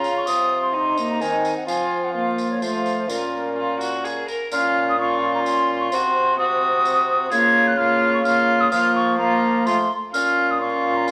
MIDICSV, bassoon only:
0, 0, Header, 1, 2, 480
1, 0, Start_track
1, 0, Key_signature, -5, "minor"
1, 0, Tempo, 469484
1, 279, Time_signature, 3, 2, 24, 8
1, 11359, End_track
2, 0, Start_track
2, 0, Title_t, "Bassoon"
2, 0, Program_c, 0, 70
2, 0, Note_on_c, 0, 49, 69
2, 279, Note_off_c, 0, 49, 0
2, 287, Note_on_c, 0, 48, 71
2, 1235, Note_on_c, 0, 51, 69
2, 1250, Note_off_c, 0, 48, 0
2, 1570, Note_off_c, 0, 51, 0
2, 1711, Note_on_c, 0, 53, 73
2, 2654, Note_off_c, 0, 53, 0
2, 2675, Note_on_c, 0, 53, 57
2, 3159, Note_on_c, 0, 46, 59
2, 3175, Note_off_c, 0, 53, 0
2, 4376, Note_off_c, 0, 46, 0
2, 4624, Note_on_c, 0, 46, 82
2, 6015, Note_off_c, 0, 46, 0
2, 6060, Note_on_c, 0, 48, 85
2, 7456, Note_off_c, 0, 48, 0
2, 7485, Note_on_c, 0, 49, 94
2, 8873, Note_off_c, 0, 49, 0
2, 8917, Note_on_c, 0, 53, 98
2, 10098, Note_off_c, 0, 53, 0
2, 10371, Note_on_c, 0, 46, 80
2, 11359, Note_off_c, 0, 46, 0
2, 11359, End_track
0, 0, End_of_file